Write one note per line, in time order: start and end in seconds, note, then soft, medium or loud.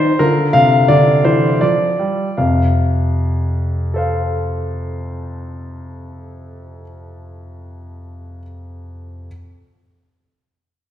0.00 0.11 D#3 medium
0.00 0.16 F4 soft
0.00 0.20 C5 medium
0.19 0.45 D3 soft
0.19 2.35 F4 soft
0.19 0.54 A#4 medium
0.53 0.79 C3 soft
0.53 0.89 F5 medium
0.88 1.15 D3 soft
0.88 1.25 D5 medium
1.25 1.51 E3 soft
1.25 1.62 C5 medium
1.61 1.89 F3 soft
1.61 2.38 D5 medium
1.99 2.27 G3 soft
2.37 6.82 F2 soft
2.37 6.82 C3 soft
2.37 3.96 F5 soft
3.94 8.38 A4 soft
3.94 8.40 C5 soft
3.94 8.42 F5 soft